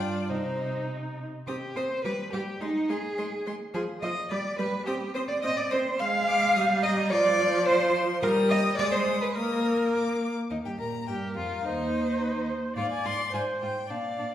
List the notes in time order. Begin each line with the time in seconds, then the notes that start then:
Already playing: G2 D4 F4
0.00 D5
0.30 C3 D#4 C5
1.47 C4 G4 D#6
1.76 C4 C5 D#6
2.04 G3 B4 D6
2.33 G3 G4 D6
2.61 G#3 D#4 C6
2.89 G#3 G#4 C6
3.18 G#3 C6
3.46 G#3 C6
3.74 F3 G#4 C6
4.01 F3 D#5 C6
4.30 G3 D5 B5
4.58 G3 B4 B5
4.86 C4 G4 D#6
5.14 C4 C5 D#6
5.28 D5
5.43 C4 D#5 D#6
5.57 D5
5.71 C4 C5 D#6
5.99 G#3 F5 C6
6.28 D6
6.56 G3 D#6
6.83 D#5 A#5
7.10 F3 D5 C6
7.66 C5 C6
8.22 G3 A#4 D#6
8.50 D#5
8.77 G#3 D5 D#6
8.92 C5
9.21 B4
9.35 A#3 A#4 D#6
9.94 D6
10.50 D#2 D#4 D#5
10.65 G2 G4 G5
10.79 A#2 A#4 A#5
11.08 G2 G4 A#4 G5
11.36 F2 F4 F5
11.65 D#2 D#4 C5 D#5
12.76 G#2 F4 D5 F5
12.92 G#5
13.05 G#2 F4 C6
13.33 G#2 F4 C5 G#5
13.62 G#2 F4 G5
13.90 A#2 D4 D5 F5
14.19 A#2 D4